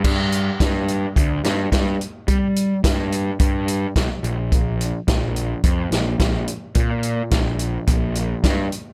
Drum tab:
CC |x-------|--------|--------|--------|
HH |-xxxxxxx|xxxxxxxx|xxxxxxxx|xxxxxxxx|
SD |--o--oo-|--o---o-|--o--oo-|--o---o-|
BD |o-o-o-o-|o-o-o-o-|o-o-o-o-|o-o-o-o-|